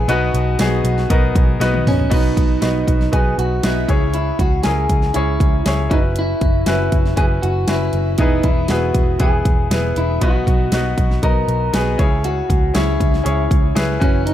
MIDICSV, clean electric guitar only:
0, 0, Header, 1, 2, 480
1, 0, Start_track
1, 0, Key_signature, 5, "major"
1, 0, Tempo, 506757
1, 80, Time_signature, 4, 2, 24, 8
1, 13580, End_track
2, 0, Start_track
2, 0, Title_t, "Clean electric guitar"
2, 0, Program_c, 0, 27
2, 94, Note_on_c, 0, 66, 84
2, 1488, Note_off_c, 0, 66, 0
2, 1784, Note_on_c, 0, 61, 77
2, 2017, Note_off_c, 0, 61, 0
2, 2021, Note_on_c, 0, 63, 76
2, 2969, Note_on_c, 0, 68, 83
2, 2998, Note_off_c, 0, 63, 0
2, 3206, Note_off_c, 0, 68, 0
2, 3210, Note_on_c, 0, 66, 79
2, 3450, Note_on_c, 0, 64, 84
2, 3451, Note_off_c, 0, 66, 0
2, 3915, Note_off_c, 0, 64, 0
2, 3926, Note_on_c, 0, 64, 77
2, 4169, Note_off_c, 0, 64, 0
2, 4173, Note_on_c, 0, 66, 73
2, 4387, Note_off_c, 0, 66, 0
2, 4391, Note_on_c, 0, 68, 88
2, 4869, Note_on_c, 0, 64, 65
2, 4889, Note_off_c, 0, 68, 0
2, 5320, Note_off_c, 0, 64, 0
2, 5602, Note_on_c, 0, 63, 74
2, 5666, Note_off_c, 0, 63, 0
2, 5860, Note_on_c, 0, 64, 84
2, 6798, Note_on_c, 0, 68, 85
2, 6837, Note_off_c, 0, 64, 0
2, 6863, Note_off_c, 0, 68, 0
2, 7033, Note_on_c, 0, 66, 82
2, 7282, Note_on_c, 0, 64, 75
2, 7283, Note_off_c, 0, 66, 0
2, 7758, Note_off_c, 0, 64, 0
2, 7762, Note_on_c, 0, 63, 80
2, 8003, Note_on_c, 0, 64, 72
2, 8007, Note_off_c, 0, 63, 0
2, 8236, Note_off_c, 0, 64, 0
2, 8240, Note_on_c, 0, 66, 73
2, 8718, Note_off_c, 0, 66, 0
2, 8722, Note_on_c, 0, 68, 69
2, 9166, Note_off_c, 0, 68, 0
2, 9450, Note_on_c, 0, 64, 72
2, 9672, Note_off_c, 0, 64, 0
2, 9676, Note_on_c, 0, 66, 81
2, 10640, Note_off_c, 0, 66, 0
2, 10644, Note_on_c, 0, 70, 91
2, 11124, Note_off_c, 0, 70, 0
2, 11127, Note_on_c, 0, 68, 81
2, 11598, Note_off_c, 0, 68, 0
2, 11602, Note_on_c, 0, 66, 87
2, 12086, Note_on_c, 0, 64, 68
2, 12093, Note_off_c, 0, 66, 0
2, 13002, Note_off_c, 0, 64, 0
2, 13282, Note_on_c, 0, 61, 73
2, 13503, Note_off_c, 0, 61, 0
2, 13507, Note_on_c, 0, 63, 85
2, 13580, Note_off_c, 0, 63, 0
2, 13580, End_track
0, 0, End_of_file